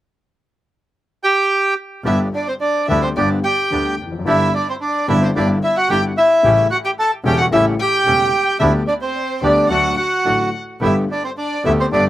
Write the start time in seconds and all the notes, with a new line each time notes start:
1.24 G4 G5
2.04 G1 G2 D3 G3 B3 D4 E4 G4 E5
2.08 E5
2.34 D4 D5
2.48 C4 C5
2.60 D4 D5
2.88 D2 D3 G3 B3 D4 E4 G4 E5
3.02 C4 C5
3.16 G1 G2 D3 G3 B3 D4 G4 D5
3.44 G4 G5
3.70 D2 D3 G3 B3 D4 G4
3.99 F1
4.05 E2
4.12 F2
4.19 F#2
4.25 G1 G2 D3 G3 B3 D4 E4 G4 E5
4.30 E5
4.54 D4 D5
4.69 C4 C5
4.81 D4 D5
5.08 G1 G2 D3 G3 B3 D4 E4 G4 E5
5.21 C4 C5
5.35 G1 G2 D3 G3 B3 D4 E4 G4 D5
5.63 E4 E5
5.77 F#4 F#5
5.89 G1 G2 D3 G3 B3 D4 E4 G4 G5
6.17 E4 E5
6.43 A1 A2 C#3 G3 A3 C#4 E4 G4
6.71 F#4 F#5
6.85 G4 G5
6.99 A4 A5
7.24 E1 E2 C#3 G3 A3 C#4 E4 G4 G5
7.38 F#4 F#5
7.51 A1 A2 C#3 G3 A3 C#4 E4 G4 E5
7.80 G4 G5
8.05 E1 E2 C#3 G3 A3 C#4 E4 G4
8.59 D2 D3 G3 B3 D4 E4 G4 E5
8.87 D4 D5
9.01 C4 C5
9.42 D2 D3 G3 B3 D4 G4 D5
9.69 D2 D3 F#3 A3 D4 F#4 F#5
9.97 F#4 F#5
10.24 A1 A2 D3 F#3 A3 D4 F#4
10.80 G1 G2 D3 A3 B3 E4 G4 E5
10.86 E5
11.11 D4 D5
11.24 C4 C5
11.37 D4 D5
11.64 D2 D3 A3 B3 E4 G4 E5
11.80 C4 C5
11.91 G1 G2 D3 A3 B3 D4 G4 D5